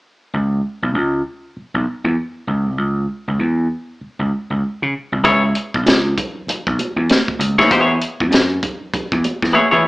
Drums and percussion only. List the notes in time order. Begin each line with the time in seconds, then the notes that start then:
5.24 kick, closed hi-hat, muted conga
5.55 closed hi-hat
5.74 kick
5.86 snare, closed hi-hat, high conga
6.18 kick, closed hi-hat, low conga
6.48 closed hi-hat, muted conga, low conga
6.67 kick
6.79 closed hi-hat, muted conga
7.10 snare, closed hi-hat, high conga
7.28 kick, high conga
7.41 closed hi-hat
7.59 kick, snare, high conga
7.71 kick, closed hi-hat, muted conga
8.02 closed hi-hat
8.20 kick
8.32 snare, closed hi-hat, high conga
8.63 kick, closed hi-hat, low conga
8.94 kick, closed hi-hat, muted conga, low conga
9.12 kick
9.24 closed hi-hat, muted conga
9.42 kick, snare
9.54 high conga
9.73 high conga